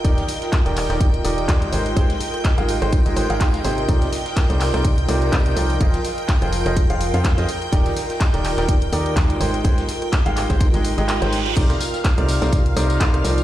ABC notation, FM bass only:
X:1
M:4/4
L:1/16
Q:"Swing 16ths" 1/4=125
K:Cm
V:1 name="FM bass" clef=bass
E,,, z4 E,,,2 E,,,3 E,,,2 E,,2 A,,,2 | A,,, z4 A,,,2 A,,,2 A,,, A,,, A,,,3 A,,,2 | C,, z4 C,,2 C,,3 C,,2 C,,2 C,,2 | F,,, z4 F,,,2 F,,,2 F,,,2 F,,2 F,, z2 |
E,,, z4 E,,,2 E,,,3 E,,2 E,,2 A,,,2 | A,,, z4 A,,,2 A,,,2 A,,,2 A,,,2 A,,,3 | C,, z4 C,,2 C,,3 C,,2 C,,2 C,,2 |]